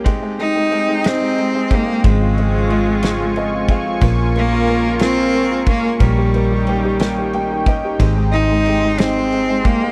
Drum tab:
RD |xxxxxx|xxxxxx|xxxxxx|xxxxxx|
SD |---o--|---o--|---o--|---o--|
BD |o----o|o----o|o----o|o----o|

RD |xxxxxx|
SD |---o--|
BD |o----o|